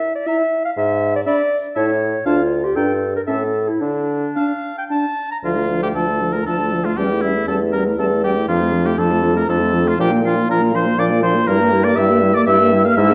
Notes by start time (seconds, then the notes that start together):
Already playing: E5
0.15 D5
0.26 E4 E5 A#5
0.65 F5
0.77 G#2 E5
1.16 D5
1.26 D4 D5 E5 B5
1.75 A2 E4 C#5 E5 A5
2.25 D2 D4 F4 F5 A5
2.65 G4
2.75 G2 D4 A4 G5 A#5
3.16 A#4
3.27 A2 C#4 A4 E5 A5
3.69 E4
3.81 D3 D4
4.36 D4 F5 A5
4.78 G5
4.89 D4 A5
5.32 A#5
5.43 D2 F3 D4 F4 F5
5.56 A3 F4
5.69 F3 D4
5.82 A3 F4 G4 G5
5.95 D2 F3 D4 A4 A5
6.08 A3 F4
6.20 F3 D4
6.33 A3 F4 A#4 A#5
6.46 D2 F3 D4 A4 A5
6.59 A3 F4
6.71 F3 D4
6.84 A3 F4 F5
6.97 E2 G3 C#4 G4 G5
7.10 A3 E4
7.21 G3 C#4 E4 E5
7.35 A3 E4
7.47 E2 G3 C#4 A4 A5
7.60 A3 E4
7.73 G3 C#4 A#4 A#5
7.86 A3 E4
7.98 E2 G3 C#4 A4 A5
8.11 A3 E4
8.23 G3 C#4 G4 G5
8.36 A3 E4
8.48 F2 F3 D4 F4 F5
8.60 A3 F4
8.73 F3 D4
8.85 A3 F4 G4 G5
8.97 F2 F3 D4 A4 A5
9.10 A3 F4
9.22 F3 D4
9.35 A3 F4 A#4 A#5
9.48 F2 F3 D4 A4 A5
9.61 A3 F4
9.73 F3 D4
9.85 A3 F4 F5
9.99 A#2 F3 D4 G4 G5
10.11 A#3 F4
10.23 F3 D4 F4 F5
10.36 A#3 F4
10.49 A#2 F3 D4 A#4 A#5
10.60 A#3 F4
10.73 F3 D4 C5 C6
10.86 A#3 F4
10.98 A#2 F3 D4 D5 D6
11.10 A#3 F4
11.23 F3 D4 C5 C6
11.35 A#3 F4
11.47 G2 G3 E4 A#4 A#5
11.59 A#3 G4
11.73 G3 E4
11.84 A#3 G4 D5 D6
11.96 G2 G3 E4 E5 E6
12.10 A#3 G4
12.22 G3 E4
12.34 A#3 G4 D5 D6
12.47 G2 G3 E4 E5 E6
12.60 A#3 G4
12.72 G3 E4
12.85 A#3 G4 F5 F6
12.96 G#2 G#3 E4 E5 E6
13.11 B3 D4